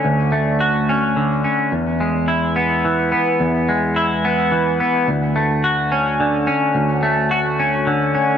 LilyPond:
\new Staff \with { instrumentName = "Clean electric guitar" } { \time 3/4 \key d \lydian \tempo 4 = 107 <d, d cis' fis'>8 a8 fis'8 cis'8 d8 cis'8 | e,8 gis8 e'8 b8 e8 b8 | e,8 gis8 e'8 b8 e8 b8 | d,8 a8 fis'8 cis'8 d8 cis'8 |
d,8 a8 fis'8 cis'8 d8 cis'8 | }